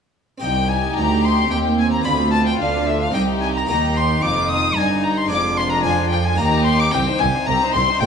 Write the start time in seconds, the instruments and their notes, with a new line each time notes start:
0.38 harpsichord C4 G4 D#5, viola section D#4, violin section G5
0.42 double bass section C2, cello section C2, harpsichord C2, violin section G4, violin G5
0.69 violin G#5, violin section G#5
0.96 double bass section D2, cello section D2, harpsichord D2, violin A#5, violin section A#5
1.24 violin section C6, violin C6
1.51 double bass section D#2, harpsichord D#2, cello section D#2, viola section C4, violin G5, violin section G5
1.78 violin G#5, violin section G#5
1.91 violin A#5, violin section A#5
2.01 harpsichord B3 F4 D5, violin B5
2.06 cello section D2, harpsichord D2, double bass section D2, violin section F4 B5
2.31 violin A5, violin section A5
2.46 violin G5, violin section G5
2.59 double bass section D2, cello section D3, harpsichord D3, viola section D4, violin F5, violin section F5
2.87 violin E5, violin section E5
3.01 violin F5, violin section F5
3.11 double bass section C2, cello section C2, harpsichord C4 G4 D#5, viola section D#4, violin section G4, violin G5
3.15 harpsichord C2, violin section G5
3.41 violin G#5, violin section G#5
3.53 violin A#5
3.58 violin section A#5
3.65 double bass section D#2, harpsichord A#3 G4 D#5, viola section D#4, violin A#5
3.69 harpsichord D#2, cello section D#2, violin section G4 A#5
3.95 violin C6, violin section C6
4.21 double bass section F1, cello section F2, harpsichord F2, violin section F4 D6, violin D6
4.49 violin D#6, violin section D#6
4.76 double bass section G1, harpsichord G2, cello section G2, violin section D#4 G#5, viola section D#4, violin G#5
5.04 violin A#5, violin section A#5
5.17 violin C6, violin section C6
5.26 harpsichord G#3 G#4 D5, violin D6
5.31 double bass section F1, harpsichord F2, cello section F2, viola section D4, violin section F4 D6
5.57 violin C6, violin section C6
5.70 violin A#5, violin section A#5
5.83 double bass section F2, harpsichord F3, cello section F3, violin G#5, violin section G#5
6.10 violin G5, violin section G5
6.24 violin G#5, violin section G#5
6.34 harpsichord A#3 G4 D#5, violin A#5
6.39 harpsichord D#2, double bass section D#2, cello section D#2, viola section D#4, violin section G4 A#5
6.65 violin C6, violin section C6
6.79 violin D6, violin section D6
6.89 harpsichord C4 G4 D#5, violin G5
6.93 harpsichord C2, double bass section C2, cello section C2, viola section C4, violin section G4 G5
7.07 viola section D#4, violin section C5
7.19 cello section C2, harpsichord C2, double bass section C2, viola section C4, violin section G4 G#5, violin G#5
7.34 viola section D#4, violin section C5
7.45 harpsichord C2, cello section C2, double bass section C2, viola section C4, violin section G4 A#5, violin A#5
7.61 viola section D#4, violin section C5
7.73 cello section C2, harpsichord C2, double bass section C2, viola section C4, violin section G4 C6, violin C6
7.87 viola section D#4, violin section C5
7.97 viola section G#3, harpsichord C4 F4 C5, violin section F4 G5
8.02 double bass section F1, harpsichord F2, cello section F2, violin G5